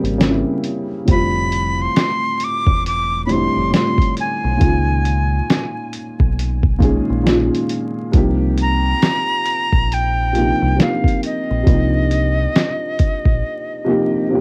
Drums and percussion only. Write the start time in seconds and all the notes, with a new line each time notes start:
0.05 closed hi-hat
0.20 snare, closed hi-hat
0.64 closed hi-hat
1.08 kick, closed hi-hat
1.52 closed hi-hat
1.96 snare, closed hi-hat
2.40 closed hi-hat
2.67 kick
2.86 closed hi-hat
3.29 closed hi-hat
3.74 snare, closed hi-hat
3.98 kick, closed hi-hat
4.17 closed hi-hat
4.61 kick, closed hi-hat
5.05 closed hi-hat
5.50 snare, closed hi-hat
5.93 closed hi-hat
6.20 kick
6.39 closed hi-hat
6.63 kick
6.80 kick, closed hi-hat
7.26 snare, closed hi-hat
7.55 closed hi-hat
7.69 closed hi-hat
8.14 kick, closed hi-hat
8.58 closed hi-hat
9.02 snare, closed hi-hat
9.46 closed hi-hat
9.73 kick
9.92 closed hi-hat
10.35 closed hi-hat
10.80 snare, closed hi-hat
11.04 kick, closed hi-hat
11.23 closed hi-hat
11.67 kick, closed hi-hat
12.11 closed hi-hat
12.56 snare, closed hi-hat
12.99 kick, closed hi-hat
13.26 kick